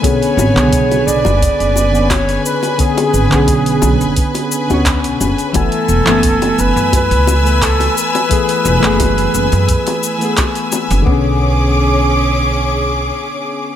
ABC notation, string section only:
X:1
M:4/4
L:1/8
Q:"Swing 16ths" 1/4=87
K:Bdor
V:1 name="String section"
[Bg]8- | [Bg]8 | [Bge']8- | [Bge']8 |
[CGd']8 |]